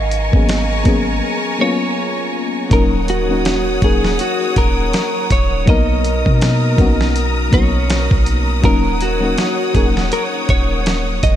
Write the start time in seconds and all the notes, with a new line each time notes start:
Already playing: G#1 A#4 D#5 G#5 A#5 C#6
0.11 closed hi-hat
0.31 G#1 F#3 A#3 B3 C#4, kick
0.36 G#4
0.49 snare, closed hi-hat
0.84 G#1 F#3 A#3 B3 C#4, kick, closed hi-hat
0.88 G#4
1.59 F#3 A#3 B3 C#4 C#5
1.63 F4
2.70 D#1 F#3 A#3 C#4 D#4 A#4 C#5 F#5 D#6, kick, closed hi-hat
2.74 A#4
3.08 F#4, closed hi-hat
3.29 F#3 A#3 C#4 D#4
3.33 A#4
3.45 snare, closed hi-hat
3.81 D#1 F#3 A#3 C#4 D#4 G#4, kick, closed hi-hat
3.85 A#4
4.04 snare
4.19 F#4, closed hi-hat
4.56 D#1 A#4, kick, closed hi-hat
4.93 snare, closed hi-hat
5.30 D#1 C#5, kick, closed hi-hat
5.66 B1 F#3 A#3 B3 D#4 A#4 D#5 A#5 D#6, kick, closed hi-hat
5.70 A#4
6.04 closed hi-hat
6.26 B2, kick
6.41 snare, closed hi-hat
6.77 B1 F#3 A#3 B3 C#4, kick, closed hi-hat
6.81 F#4
6.86 D#4
7.01 snare
7.16 closed hi-hat
7.51 B1 F#3 A#3 B3 D#4 C#5, kick, closed hi-hat
7.55 F#4
7.90 snare, closed hi-hat
8.11 B1, kick
8.26 closed hi-hat
8.62 D#1 F#3 A#3 C#4 D#4 A#4 C#5 F#5, kick, closed hi-hat
8.66 A#4
9.01 F#4, closed hi-hat
9.20 F#3 A#3 C#4 D#4
9.24 A#4
9.38 snare, closed hi-hat
9.73 D#1 F#3 A#3 C#4 D#4 G#4, kick, closed hi-hat
9.77 A#4
9.97 snare
10.12 A#4, closed hi-hat
10.49 D#1 C#5, kick, closed hi-hat
10.86 snare, closed hi-hat
11.23 D#1 D#5, kick, closed hi-hat